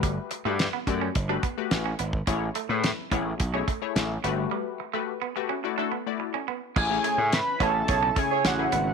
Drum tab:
CC |----------------|----------------|----------------|x---------------|
HH |x-x-x-x-x-x-x-x-|x-x-x-x-x-x-x-x-|----------------|--x-x-x-x-x-x-x-|
SD |----o-------o---|----o-------o---|----------------|----o-------o---|
BD |o-----o-o-o----o|o-----o-o-o-----|----------------|o-----o-o-o-----|